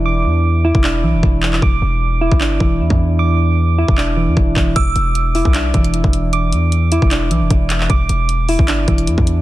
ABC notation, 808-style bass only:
X:1
M:4/4
L:1/16
Q:1/4=153
K:Clyd
V:1 name="808-style bass" clef=bass
E,,,2 E,,4- E,, E,,,3 B,,, E,,, E,,,4 | E,,,2 E,,,4- E,,, G,,,3 E,,,2 E,, E,,3- | E,,6- E,, E,,,4 E,, E,,,2 E,,,2 | E,,,2 E,,,4- E,,, B,,,3 E,,,3 E,,,3- |
E,,,2 E,,4- E,, E,,,3 B,,, E,,, E,,,4 | E,,,2 E,,,4- E,,, G,,,3 E,,,2 E,, E,,3 |]